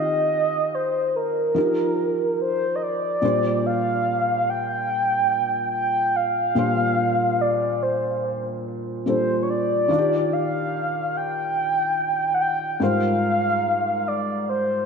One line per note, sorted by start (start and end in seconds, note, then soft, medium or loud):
0.00 1.52 D#3 medium
0.00 1.52 C4 medium
0.00 1.53 F4 medium
0.00 1.53 G4 medium
0.00 0.76 D#5 loud
0.75 1.18 C5 medium
1.16 2.40 A#4 medium
1.55 3.19 F3 medium
1.55 3.19 D#4 medium
1.55 3.20 G4 medium
1.55 3.20 A#4 medium
2.42 2.77 C5 medium
2.75 2.84 D#5 medium
2.83 3.68 D5 loud
3.22 6.51 A#2 medium
3.22 6.52 G3 medium
3.22 6.53 D4 medium
3.22 6.53 C5 medium
3.66 4.51 F5 loud
4.50 5.74 G5 loud
5.74 6.18 G5 loud
6.16 7.43 F5 loud
6.55 9.01 A#2 medium
6.55 9.02 G3 medium
6.55 9.03 D4 medium
6.55 9.03 C5 medium
7.41 7.84 D5 loud
7.83 8.65 C5 medium
9.06 9.89 A#2 medium
9.06 9.89 G3 soft
9.06 9.88 D4 soft
9.06 9.90 A4 medium
9.06 9.44 C5 medium
9.43 9.51 C#5 medium
9.50 10.35 D5 loud
9.88 12.76 D#3 medium
9.88 12.77 D4 medium
9.88 12.78 F4 medium
9.88 9.97 F#4 medium
9.98 12.81 G4 medium
10.33 11.18 F5 loud
11.17 12.33 G5 loud
12.34 12.43 F#5 medium
12.41 12.82 G5 loud
12.80 14.86 G#2 medium
12.80 14.86 G3 medium
12.80 14.86 F4 medium
12.80 14.86 A#4 medium
12.80 14.86 C5 medium
12.80 14.09 F5 loud
14.08 14.49 D5 medium
14.49 14.86 C5 medium